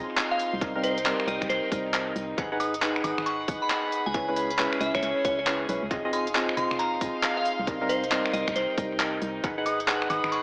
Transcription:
Already playing: synth stab C4 F4 G#4 D#5, string section D#4 G#4 F5 C6
0.17 clap, closed hi-hat
0.31 synth bell F5
0.39 open hi-hat
0.53 fm bass C2
0.61 synth stab G3 C4 D#4 A#4, kick, closed hi-hat
0.75 synth stab G3 C4 D#4 A#4, string section G5
0.83 synth stab G3 C4 D#4 A#4, synth bell C5, open hi-hat
0.95 string section A#4, closed hi-hat
1.05 synth stab G3 C4 D#4 A#4, clap, closed hi-hat
1.20 finger snap
1.27 fm bass C2, synth stab G3 C4 D#4 A#4, synth bell D#5, open hi-hat
1.42 fm bass C2, finger snap, kick, closed hi-hat
1.49 fm bass C2, synth bell C5, closed hi-hat
1.72 fm bass C2, synth stab G3 C4 D#4 A#4, kick, open hi-hat
1.94 clap, closed hi-hat
2.16 fm bass C2, open hi-hat
2.38 fm bass G#1, synth stab D#4 G#4 B4 F#5, kick, closed hi-hat
2.52 synth stab D#4 G#4 B4 F#5
2.60 synth stab D#4 G#4 B4 F#5, synth bell D#6, open hi-hat
2.73 string section G#4 F#5, closed hi-hat
2.82 synth stab D#4 G#4 B4 F#5, clap, closed hi-hat
2.96 finger snap
3.04 fm bass G#1, synth stab D#4 G#4 B4 F#5, synth bell D#6, open hi-hat
3.18 fm bass G#1, string section B5, finger snap
3.26 synth bell C#6, closed hi-hat
3.48 fm bass G#1, synth stab D#4 G#4 B4 F#5, kick, open hi-hat
3.62 synth bell B5
3.70 clap, closed hi-hat
3.92 open hi-hat
4.06 fm bass C#2, synth bell G#5
4.14 synth stab G#3 C#4 E4 B4, string section C#4, synth bell G#5, kick, closed hi-hat
4.28 synth stab G#3 C#4 E4 B4
4.36 synth stab G#3 C#4 E4 B4, open hi-hat
4.50 closed hi-hat
4.55 synth stab G#3 C#4 E4 B4, string section E5, clap, closed hi-hat
4.73 finger snap
4.80 fm bass C#2, synth stab G#3 C#4 E4 B4, synth bell E5, open hi-hat
4.95 fm bass C#2, synth bell C#5, finger snap, kick, closed hi-hat
5.03 fm bass C#2, synth bell C#5, closed hi-hat
5.25 fm bass C#2, synth stab G#3 C#4 E4 B4, synth bell C#5, kick, open hi-hat
5.39 synth bell C#5
5.47 synth stab G#3 C#4 E4 B4, clap, closed hi-hat
5.69 fm bass B1, synth stab G#3 C#4 E4 B4, open hi-hat
5.83 fm bass C#2
5.91 fm bass F1, synth stab C4 F4 G#4 D#5, string section D#4, kick, closed hi-hat
6.05 synth stab C4 F4 G#4 D#5, string section F5
6.13 synth stab C4 F4 G#4 D#5, synth bell C6, open hi-hat
6.27 closed hi-hat
6.35 synth stab C4 F4 G#4 D#5, clap, closed hi-hat
6.49 finger snap
6.57 fm bass F1, synth stab C4 F4 G#4 D#5, synth bell C6, open hi-hat
6.69 fm bass F1, string section C6, finger snap
6.79 synth bell A#5, closed hi-hat
7.01 fm bass F1, synth stab C4 F4 G#4 D#5, kick, open hi-hat
7.23 clap, closed hi-hat
7.37 synth bell F5
7.45 open hi-hat
7.59 fm bass C2
7.67 synth stab G3 C4 D#4 A#4, kick, closed hi-hat
7.81 synth stab G3 C4 D#4 A#4
7.89 synth stab G3 C4 D#4 A#4, string section A#4, synth bell C5, open hi-hat
8.04 closed hi-hat
8.12 synth stab G3 C4 D#4 A#4, clap, closed hi-hat
8.26 finger snap
8.33 fm bass C2, synth stab G3 C4 D#4 A#4, synth bell D#5, open hi-hat
8.47 fm bass C2, string section G5, finger snap, kick, closed hi-hat
8.56 fm bass C2, synth bell C5, closed hi-hat
8.78 fm bass C2, synth stab G3 C4 D#4 A#4, kick, open hi-hat
9.00 clap, closed hi-hat
9.22 fm bass C2, open hi-hat
9.44 fm bass G#1, synth stab D#4 G#4 B4 F#5, kick, closed hi-hat
9.58 synth stab D#4 G#4 B4 F#5, string section F#5
9.64 synth stab D#4 G#4 B4 F#5, string section G#4, synth bell D#6, open hi-hat
9.80 string section B5, closed hi-hat
9.88 synth stab D#4 G#4 B4 F#5, clap, closed hi-hat
10.02 finger snap
10.10 fm bass G#1, synth stab D#4 G#4 B4 F#5, synth bell D#6, open hi-hat
10.24 fm bass G#1, finger snap
10.32 synth bell C#6, closed hi-hat

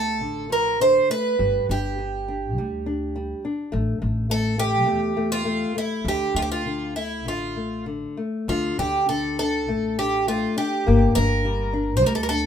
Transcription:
Already playing: upright bass D2, nylon-string guitar A3, twelve-string acoustic guitar A4
0.21 upright bass A1, nylon-string guitar D3
0.50 nylon-string guitar F3, twelve-string acoustic guitar A#4
0.80 nylon-string guitar D3, twelve-string acoustic guitar C5
1.10 nylon-string guitar A3, twelve-string acoustic guitar B4
1.39 upright bass G1, nylon-string guitar G3
1.69 upright bass G1, nylon-string guitar D4, twelve-string acoustic guitar G4
1.99 nylon-string guitar G3
2.28 nylon-string guitar D4
2.57 upright bass D2, nylon-string guitar G3
2.86 nylon-string guitar D4
3.16 nylon-string guitar G3
3.45 nylon-string guitar D4
3.72 upright bass A1, nylon-string guitar A3
4.02 upright bass A1, nylon-string guitar A3
4.30 nylon-string guitar A3, twelve-string acoustic guitar A4
4.58 nylon-string guitar A3, twelve-string acoustic guitar G4
4.86 upright bass E2, nylon-string guitar A3
5.17 nylon-string guitar A3
5.32 twelve-string acoustic guitar F4
5.45 nylon-string guitar A3
5.75 nylon-string guitar A3, twelve-string acoustic guitar E4
6.05 upright bass D2, nylon-string guitar D3, twelve-string acoustic guitar G4
6.34 upright bass D2, nylon-string guitar A3, twelve-string acoustic guitar F4
6.42 twelve-string acoustic guitar G4
6.52 twelve-string acoustic guitar F4
6.65 nylon-string guitar D3
6.96 nylon-string guitar A3, twelve-string acoustic guitar E4
7.25 upright bass A1, nylon-string guitar D3, twelve-string acoustic guitar F4
7.56 nylon-string guitar A3
7.86 nylon-string guitar D3
8.17 nylon-string guitar A3
8.48 upright bass D2, nylon-string guitar D3, twelve-string acoustic guitar F4
8.79 upright bass D2, nylon-string guitar D4, twelve-string acoustic guitar G4
9.09 nylon-string guitar D3, twelve-string acoustic guitar A4
9.39 nylon-string guitar D4, twelve-string acoustic guitar A4
9.68 upright bass A1, nylon-string guitar A3
9.98 nylon-string guitar D4, twelve-string acoustic guitar G4
10.27 nylon-string guitar A3, twelve-string acoustic guitar F4
10.57 nylon-string guitar D4, twelve-string acoustic guitar G4
10.87 upright bass G1, nylon-string guitar A#3
11.15 upright bass G1, nylon-string guitar D4, twelve-string acoustic guitar A#4
11.45 nylon-string guitar G3
11.73 nylon-string guitar D4
11.97 twelve-string acoustic guitar C5
12.02 upright bass D2, nylon-string guitar G3
12.06 twelve-string acoustic guitar A#4
12.15 twelve-string acoustic guitar A4
12.23 twelve-string acoustic guitar A#4
12.29 nylon-string guitar D4, twelve-string acoustic guitar A4

